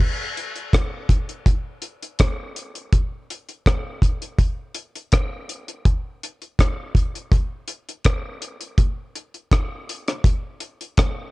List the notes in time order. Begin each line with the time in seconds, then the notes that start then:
0.00 kick, crash
0.37 closed hi-hat
0.56 closed hi-hat
0.73 kick, cross-stick, closed hi-hat
1.09 kick, closed hi-hat
1.29 closed hi-hat
1.46 kick, closed hi-hat
1.82 closed hi-hat
2.03 closed hi-hat
2.19 kick, cross-stick, closed hi-hat
2.56 closed hi-hat
2.75 closed hi-hat
2.93 kick, closed hi-hat
3.30 closed hi-hat
3.49 closed hi-hat
3.66 kick, cross-stick, closed hi-hat
4.02 kick, closed hi-hat
4.22 closed hi-hat
4.38 kick, closed hi-hat
4.74 closed hi-hat
4.95 closed hi-hat
5.12 kick, cross-stick, closed hi-hat
5.49 closed hi-hat
5.68 closed hi-hat
5.85 kick, closed hi-hat
6.23 closed hi-hat
6.42 closed hi-hat
6.59 kick, cross-stick, closed hi-hat
6.95 kick, closed hi-hat
7.15 closed hi-hat
7.32 kick, closed hi-hat
7.68 closed hi-hat
7.89 closed hi-hat
8.04 kick, cross-stick, closed hi-hat
8.42 closed hi-hat
8.61 closed hi-hat
8.78 kick, closed hi-hat
9.15 closed hi-hat
9.34 closed hi-hat
9.51 kick, cross-stick, closed hi-hat
9.89 closed hi-hat
10.08 cross-stick, closed hi-hat
10.24 kick, closed hi-hat
10.60 closed hi-hat
10.81 closed hi-hat
10.97 kick, cross-stick, closed hi-hat